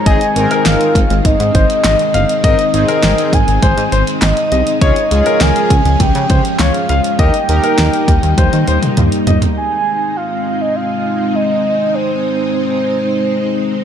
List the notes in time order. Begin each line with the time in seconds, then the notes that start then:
Already playing: G#3
0.06 G#1 D#3 C4 D#4 G#4 D#5 G#5, kick, closed hi-hat
0.21 closed hi-hat
0.36 G#1 C4 D#4 A#4, closed hi-hat
0.51 A#4, closed hi-hat
0.66 G#1 F5, snare, closed hi-hat
0.81 closed hi-hat
0.95 G#1, kick, closed hi-hat
1.10 G#1, closed hi-hat
1.25 G#1 D#5, kick, closed hi-hat
1.40 G#2, closed hi-hat
1.55 G#1 C5, kick, closed hi-hat
1.70 closed hi-hat
1.84 G#1 D#5, snare, clap, closed hi-hat
1.99 closed hi-hat
2.14 G1 D#5 F5, closed hi-hat
2.29 closed hi-hat
2.44 G#1 C4 D#4 A#4 D#5, kick, closed hi-hat
2.59 closed hi-hat
2.74 G#1 C4 D#4 G#4, closed hi-hat
2.88 A#4, closed hi-hat
3.03 G#1, snare, closed hi-hat
3.18 closed hi-hat
3.33 G#1 G#5, kick, closed hi-hat
3.48 G#1, closed hi-hat
3.62 G#1 C5, kick, closed hi-hat
3.77 G#2, closed hi-hat
3.92 G#1 C5, closed hi-hat
4.07 closed hi-hat
4.22 G#1 D#5, snare, clap, closed hi-hat
4.37 closed hi-hat
4.52 C2 D#5, closed hi-hat
4.67 closed hi-hat
4.81 C#2 F3 G#3 C#4 F4 G#4 C#5 D#5, kick, closed hi-hat
4.96 closed hi-hat
5.11 C#2 C#4 F4 G#4, closed hi-hat
5.26 A#4, closed hi-hat
5.41 C#2 G#5, snare, closed hi-hat
5.56 closed hi-hat
5.70 C#2, kick, closed hi-hat
5.85 C#2, closed hi-hat
6.00 C#2 G5, kick, closed hi-hat
6.15 C#3, closed hi-hat
6.30 C#2 C5, kick, closed hi-hat
6.45 closed hi-hat
6.59 C#2 C#5 F5, snare, clap, closed hi-hat
6.74 closed hi-hat
6.89 C#2 F5, closed hi-hat
7.04 closed hi-hat
7.19 D#2 G3 A#3 D#4 G4 A#4 D#5 G5, kick, closed hi-hat
7.34 closed hi-hat
7.49 D#2 D#4 G4 A#4, closed hi-hat
7.64 A#4, closed hi-hat
7.78 D#2, snare, closed hi-hat
7.94 closed hi-hat
8.08 D#2, kick, closed hi-hat
8.23 D#2, closed hi-hat
8.38 D#2 C5, kick, closed hi-hat, high tom
8.53 D#3, closed hi-hat
8.68 D#2 C5, closed hi-hat
8.82 closed hi-hat, mid tom
8.97 D#2, closed hi-hat, mid tom
9.12 closed hi-hat
9.27 G1 D#5, closed hi-hat, floor tom
9.42 closed hi-hat, floor tom
9.57 G#3 C4 D#4 G#5
10.17 F5
10.61 D#5
10.76 F5
11.35 D#5
11.95 C5
12.54 C5